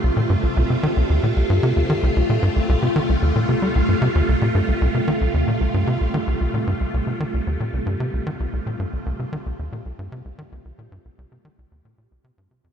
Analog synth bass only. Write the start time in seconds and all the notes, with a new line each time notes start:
0.04 C2
0.17 A#2
0.30 G2
0.43 C2
0.57 C2
0.70 C3
0.83 D#3
0.97 C2
1.10 D#2
1.23 A#2
1.37 C2
1.50 G2
1.63 C3
1.76 D#2
1.90 D#3
2.03 C2
2.16 C2
2.29 A#2
2.43 G2
2.56 C2
2.69 C2
2.82 C3
2.96 D#3
3.09 C2
3.22 D#2
3.35 A#2
3.49 C3
3.62 G3
3.75 C2
3.89 G2
4.02 C3
4.15 D#2
4.29 C2
4.42 A#2
4.55 G2
4.68 C2
4.81 C2
4.95 C3
5.08 D#3
5.21 C2
5.34 D#2
5.47 A#2
5.61 C2
5.74 G2
5.87 C3
6.01 C2
6.14 D#3
6.27 C2
6.41 C2
6.54 A#2
6.67 G2
6.80 C2
6.94 C2
7.07 C3
7.20 D#3
7.34 C2
7.47 D#2
7.60 A#2
7.73 C2
7.86 G2
8.00 C3
8.13 C2
8.27 D#3
8.40 C2
8.53 C2
8.66 A#2
8.79 G2
8.93 C2
9.06 C2
9.19 C3
9.33 D#3
9.46 C2
9.59 D#2
9.72 A#2
9.86 C2
9.99 G2
10.12 C3
10.25 C2
10.38 D#3
10.52 C2
10.65 C2
10.78 A#2
10.92 G2
11.05 C2
11.18 C2
11.32 C3
11.45 D#3
11.58 C2
11.72 D#2
11.85 A#2
11.98 A#2
12.11 C2
12.24 C3
12.38 G2
12.51 C3
12.64 F2